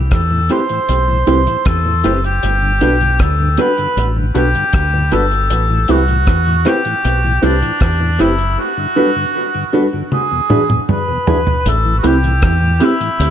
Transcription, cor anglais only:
0.14 0.53 A4 medium
0.51 1.68 C5 loud
1.67 2.24 A4 loud
2.25 3.24 G4 loud
3.22 3.62 A4 medium
3.60 4.09 B4 loud
4.37 5.15 G4 loud
5.13 5.92 A4 loud
5.91 6.69 F#4 loud
6.68 7.45 G4 loud
7.44 8.23 D4 medium
8.21 8.59 E4 medium
8.60 9.82 F#4 loud
10.13 10.85 G#4 medium
10.92 11.70 B4 medium
11.68 11.98 A4 medium
11.99 12.08 F#4 medium
12.07 12.85 G4 loud
12.84 13.30 E4 loud

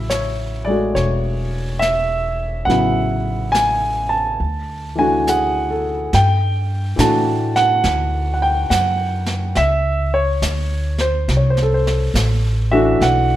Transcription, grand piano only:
0.00 2.66 C#3 soft
0.00 2.67 F#3 soft
0.00 2.67 B3 soft
0.00 2.67 E4 soft
0.00 1.79 E5 medium
0.10 0.68 C#5 medium
0.65 2.68 G#3 soft
0.65 0.96 D5 medium
0.69 2.68 A3 soft
0.69 2.69 F#4 soft
0.95 1.84 C#5 medium
1.79 2.69 E5 medium
2.65 4.39 C#3 soft
2.65 4.40 F#3 soft
2.65 4.40 B3 soft
2.65 4.40 E4 soft
2.65 3.48 F#5 medium
3.52 4.11 G#5 medium
4.09 5.78 A5 medium
4.95 6.12 E3 soft
4.95 6.13 A3 soft
4.95 6.13 D4 soft
4.95 5.25 G#5 medium
5.01 6.14 F#4 soft
5.28 5.95 G#4 soft
5.28 6.10 F#5 medium
5.71 6.31 A4 soft
6.14 6.96 G5 medium
6.96 7.48 E3 soft
6.96 7.49 A3 soft
6.96 7.50 D4 soft
6.96 7.50 F#4 medium
7.00 7.52 A5 medium
7.56 8.32 F#5 medium
8.34 8.42 F#5 medium
8.42 8.69 G5 medium
8.70 9.52 F#5 medium
9.57 10.15 E5 medium
10.14 11.02 C#5 medium
11.01 11.35 C5 medium
11.37 11.49 C#5 soft
11.50 11.62 C5 medium
11.62 11.74 A4 soft
11.74 11.86 C5 medium
12.71 13.36 E3 medium
12.71 13.36 A3 medium
12.71 13.36 D4 medium
12.71 13.36 F#4 medium
12.71 12.99 E5 medium
13.02 13.36 F#5 medium

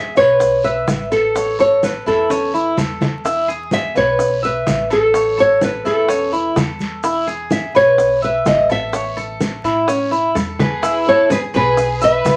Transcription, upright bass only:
0.00 0.10 E2 medium
0.17 0.84 B1 medium
0.88 2.00 A1 medium
2.06 2.73 E2 medium
2.78 3.90 E2 medium
3.96 4.63 B1 medium
4.67 5.79 A1 medium
5.85 6.52 E2 medium
6.56 7.68 E2 medium
7.75 8.42 B1 medium
8.46 9.58 A1 medium
9.64 10.31 A2 medium
10.35 11.47 E2 medium
11.54 12.21 B1 medium
12.25 12.37 A1 medium

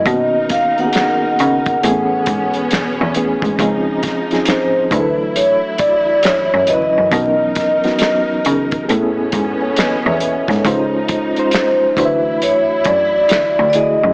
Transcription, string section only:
0.05 1.80 D#4 medium
0.05 1.80 A#4 medium
1.82 3.57 B2 medium
1.82 3.57 B3 medium
1.82 3.57 C#4 medium
3.58 4.90 C#3 medium
3.58 4.90 F3 medium
3.58 4.90 D#4 medium
4.90 8.84 E3 medium
4.90 7.09 F#3 medium
4.90 7.09 E4 medium
7.11 8.86 D#4 medium
7.11 8.86 A#4 medium
8.88 10.63 B2 medium
8.88 10.63 B3 medium
8.88 10.63 C#4 medium
10.64 11.95 C#3 medium
10.64 11.95 F3 medium
10.64 11.96 D#4 medium
11.96 14.13 E3 medium
11.96 14.13 F#3 medium
11.96 14.13 E4 medium

